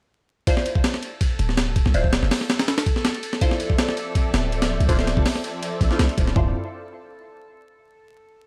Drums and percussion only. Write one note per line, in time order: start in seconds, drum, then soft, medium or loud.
0.47 kick loud
0.47 ride medium
0.57 snare soft
0.66 ride medium
0.75 kick medium
0.84 snare loud
0.84 ride medium
0.94 snare medium
1.02 ride medium
1.21 kick loud
1.21 ride medium
1.39 ride medium
1.49 snare soft
1.57 snare loud
1.57 ride medium
1.76 kick loud
1.76 ride medium
1.86 snare soft
1.94 ride medium
2.04 kick medium
2.13 snare loud
2.13 ride medium
2.23 snare medium
2.31 snare loud
2.31 open hi-hat medium
2.41 snare medium
2.50 snare loud
2.50 ride medium
2.59 snare loud
2.59 ride medium
2.68 snare loud
2.68 ride medium
2.78 snare loud
2.78 ride medium
2.86 kick loud
2.86 ride medium
2.96 snare soft
3.05 snare loud
3.05 ride medium
3.14 ride soft
3.23 ride medium
3.33 snare medium
3.41 kick loud
3.41 ride medium
3.51 snare soft
3.60 ride medium
3.70 kick medium
3.79 snare loud
3.79 ride medium
3.89 snare medium
3.97 ride medium
4.15 kick loud
4.15 ride medium
4.34 snare loud
4.34 ride medium
4.52 ride medium
4.62 snare loud
4.62 ride medium
4.80 ride medium
4.89 kick loud
4.89 ride medium
4.99 snare medium
5.07 snare medium
5.07 ride medium
5.17 kick medium
5.26 snare loud
5.26 open hi-hat medium
5.36 snare soft
5.44 ride medium
5.63 ride medium
5.81 kick loud
5.81 ride medium
5.91 snare soft
5.99 snare loud
5.99 ride medium
6.09 ride soft
6.18 kick loud
6.18 ride medium
6.27 snare soft
6.36 kick loud
6.36 floor tom loud